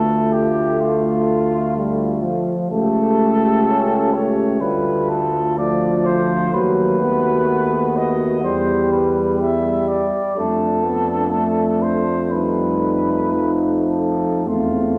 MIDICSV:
0, 0, Header, 1, 6, 480
1, 0, Start_track
1, 0, Tempo, 952381
1, 1365, Time_signature, 4, 2, 24, 8
1, 4250, Tempo, 970874
1, 6170, Tempo, 1018676
1, 6650, Tempo, 1151631
1, 7337, End_track
2, 0, Start_track
2, 0, Title_t, "Flugelhorn"
2, 0, Program_c, 0, 56
2, 0, Note_on_c, 0, 69, 72
2, 162, Note_on_c, 0, 67, 62
2, 170, Note_off_c, 0, 69, 0
2, 405, Note_on_c, 0, 65, 64
2, 413, Note_off_c, 0, 67, 0
2, 1121, Note_off_c, 0, 65, 0
2, 1363, Note_on_c, 0, 69, 80
2, 2086, Note_on_c, 0, 73, 65
2, 2094, Note_off_c, 0, 69, 0
2, 2324, Note_on_c, 0, 71, 64
2, 2332, Note_off_c, 0, 73, 0
2, 2566, Note_on_c, 0, 69, 70
2, 2574, Note_off_c, 0, 71, 0
2, 2810, Note_on_c, 0, 74, 70
2, 2818, Note_off_c, 0, 69, 0
2, 3050, Note_on_c, 0, 72, 71
2, 3058, Note_off_c, 0, 74, 0
2, 3295, Note_on_c, 0, 71, 78
2, 3303, Note_off_c, 0, 72, 0
2, 4016, Note_on_c, 0, 75, 68
2, 4024, Note_off_c, 0, 71, 0
2, 4249, Note_off_c, 0, 75, 0
2, 4252, Note_on_c, 0, 72, 67
2, 4488, Note_on_c, 0, 71, 58
2, 4495, Note_off_c, 0, 72, 0
2, 4729, Note_on_c, 0, 76, 66
2, 4737, Note_off_c, 0, 71, 0
2, 4966, Note_on_c, 0, 74, 64
2, 4973, Note_off_c, 0, 76, 0
2, 5215, Note_on_c, 0, 69, 64
2, 5222, Note_off_c, 0, 74, 0
2, 5926, Note_on_c, 0, 72, 57
2, 5934, Note_off_c, 0, 69, 0
2, 6168, Note_on_c, 0, 71, 54
2, 6175, Note_off_c, 0, 72, 0
2, 6803, Note_off_c, 0, 71, 0
2, 6874, Note_on_c, 0, 69, 57
2, 7124, Note_on_c, 0, 65, 53
2, 7130, Note_off_c, 0, 69, 0
2, 7337, Note_off_c, 0, 65, 0
2, 7337, End_track
3, 0, Start_track
3, 0, Title_t, "French horn section"
3, 0, Program_c, 1, 60
3, 0, Note_on_c, 1, 65, 49
3, 1283, Note_off_c, 1, 65, 0
3, 1369, Note_on_c, 1, 67, 58
3, 2307, Note_off_c, 1, 67, 0
3, 2325, Note_on_c, 1, 65, 50
3, 2802, Note_off_c, 1, 65, 0
3, 2812, Note_on_c, 1, 65, 51
3, 3283, Note_off_c, 1, 65, 0
3, 3293, Note_on_c, 1, 66, 48
3, 4234, Note_off_c, 1, 66, 0
3, 4259, Note_on_c, 1, 67, 47
3, 4719, Note_off_c, 1, 67, 0
3, 4725, Note_on_c, 1, 67, 44
3, 5126, Note_off_c, 1, 67, 0
3, 5210, Note_on_c, 1, 62, 43
3, 6153, Note_off_c, 1, 62, 0
3, 6176, Note_on_c, 1, 63, 45
3, 7118, Note_on_c, 1, 60, 37
3, 7123, Note_off_c, 1, 63, 0
3, 7337, Note_off_c, 1, 60, 0
3, 7337, End_track
4, 0, Start_track
4, 0, Title_t, "Euphonium"
4, 0, Program_c, 2, 58
4, 0, Note_on_c, 2, 57, 57
4, 1277, Note_off_c, 2, 57, 0
4, 1363, Note_on_c, 2, 57, 59
4, 2304, Note_off_c, 2, 57, 0
4, 2325, Note_on_c, 2, 57, 53
4, 2802, Note_off_c, 2, 57, 0
4, 2817, Note_on_c, 2, 57, 53
4, 3285, Note_off_c, 2, 57, 0
4, 3290, Note_on_c, 2, 57, 51
4, 4232, Note_off_c, 2, 57, 0
4, 4257, Note_on_c, 2, 55, 43
4, 4591, Note_off_c, 2, 55, 0
4, 4730, Note_on_c, 2, 55, 52
4, 5190, Note_off_c, 2, 55, 0
4, 5209, Note_on_c, 2, 57, 49
4, 6152, Note_off_c, 2, 57, 0
4, 6171, Note_on_c, 2, 57, 45
4, 7105, Note_off_c, 2, 57, 0
4, 7121, Note_on_c, 2, 57, 37
4, 7337, Note_off_c, 2, 57, 0
4, 7337, End_track
5, 0, Start_track
5, 0, Title_t, "Trombone"
5, 0, Program_c, 3, 57
5, 0, Note_on_c, 3, 57, 57
5, 886, Note_off_c, 3, 57, 0
5, 889, Note_on_c, 3, 55, 55
5, 1122, Note_on_c, 3, 53, 49
5, 1129, Note_off_c, 3, 55, 0
5, 1365, Note_on_c, 3, 57, 60
5, 1372, Note_off_c, 3, 53, 0
5, 1848, Note_off_c, 3, 57, 0
5, 1853, Note_on_c, 3, 61, 56
5, 2088, Note_on_c, 3, 57, 50
5, 2095, Note_off_c, 3, 61, 0
5, 2325, Note_on_c, 3, 55, 54
5, 2332, Note_off_c, 3, 57, 0
5, 2677, Note_off_c, 3, 55, 0
5, 2814, Note_on_c, 3, 53, 58
5, 3293, Note_on_c, 3, 54, 53
5, 3300, Note_off_c, 3, 53, 0
5, 3534, Note_on_c, 3, 59, 57
5, 3542, Note_off_c, 3, 54, 0
5, 4251, Note_on_c, 3, 55, 57
5, 4259, Note_off_c, 3, 59, 0
5, 5205, Note_off_c, 3, 55, 0
5, 5208, Note_on_c, 3, 57, 54
5, 5447, Note_on_c, 3, 59, 46
5, 5454, Note_off_c, 3, 57, 0
5, 5682, Note_on_c, 3, 57, 43
5, 5690, Note_off_c, 3, 59, 0
5, 6032, Note_off_c, 3, 57, 0
5, 6168, Note_on_c, 3, 55, 44
5, 6631, Note_off_c, 3, 55, 0
5, 6651, Note_on_c, 3, 53, 41
5, 7120, Note_on_c, 3, 57, 44
5, 7127, Note_off_c, 3, 53, 0
5, 7337, Note_off_c, 3, 57, 0
5, 7337, End_track
6, 0, Start_track
6, 0, Title_t, "Tuba"
6, 0, Program_c, 4, 58
6, 0, Note_on_c, 4, 38, 52
6, 1281, Note_off_c, 4, 38, 0
6, 1367, Note_on_c, 4, 37, 53
6, 2306, Note_off_c, 4, 37, 0
6, 2325, Note_on_c, 4, 38, 54
6, 3273, Note_off_c, 4, 38, 0
6, 3295, Note_on_c, 4, 39, 54
6, 4254, Note_on_c, 4, 40, 51
6, 4261, Note_off_c, 4, 39, 0
6, 5075, Note_off_c, 4, 40, 0
6, 5209, Note_on_c, 4, 41, 46
6, 7105, Note_off_c, 4, 41, 0
6, 7123, Note_on_c, 4, 40, 38
6, 7337, Note_off_c, 4, 40, 0
6, 7337, End_track
0, 0, End_of_file